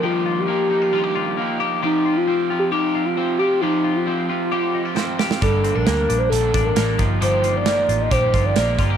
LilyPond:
<<
  \new Staff \with { instrumentName = "Soft synth lead" } { \time 4/4 \key f \mixolydian \tempo 4 = 134 f'8. g'16 g'2~ g'8 r8 | ees'8. f'4 g'16 ees'8. f'8. g'8 | ees'8. f'16 r2. | a'8. bes'4 c''16 a'8. bes'8. r8 |
c''8. d''4 ees''16 c''8. d''8. r8 | }
  \new Staff \with { instrumentName = "Clean electric guitar" } { \time 4/4 \key f \mixolydian <f g'>8 f'8 bes8 ees'16 f'16 f'16 g'16 f'8 bes8 g'8 | <f g'>8 f'8 c'8 f'8 g'8 f'8 c'8 g'8 | <f g'>8 f'8 c'8 f'8 g'8 ees'16 f'16 c'8 g'8 | g8 c'16 d'16 bes8 d'4 d'8 bes8 f8 |
<f g'>8 f'8 bes8 f'8 g'8 f'8 bes8 f'16 g'16 | }
  \new Staff \with { instrumentName = "Overdriven electric guitar" } { \time 4/4 \key f \mixolydian <g, ees f bes ees' g'>4 <f bes ees' g'>8 <f bes ees' g'>8 <g, ees f bes ees' g'>4 <f bes ees' g'>8 <f bes ees' g'>8 | <f c' f' g'>4 <f c' f' g'>8 <c' f' g'>8 <f c' f' g'>4 <f c' f' g'>8 <c' f' g'>8 | <f c' f' g'>4 <f c' f' g'>8 <c' f' g'>8 <f c' f' g'>4 <f c' f' g'>8 <c' f' g'>8 | <g, d g bes d' a'>4 <g bes d'>4 <g, d g bes d' a'>4 <g bes d' a'>8 <f bes ees' g'>8 |
<g, ees f bes ees' g'>4 <f bes ees' g'>4 <g, ees f bes ees' g'>4 <f bes ees' g'>8 <f bes ees' g'>8 | }
  \new Staff \with { instrumentName = "Picked electric bass" } { \clef bass \time 4/4 \key f \mixolydian r1 | r1 | r1 | g,,8. bes,,16 d,8 bes,,8 bes,,8 a,,8 a,,8 g,,8 |
g,,4. a,,8 bes,,8 g,,8 bes,,8 g,,8 | }
  \new DrumStaff \with { instrumentName = "Drums" } \drummode { \time 4/4 r4 r4 r4 r4 | r4 r4 r4 r4 | r4 r4 r4 sn8 sn16 sn16 | <hh bd>8 hh8 <hh sn>8 hh8 hh8 <hh bd>8 <hh sn>8 <hh bd>8 |
hh8 hh8 <hh sn>8 hh8 <hh bd>8 <hh bd>8 <hh sn>8 <hh bd>8 | }
>>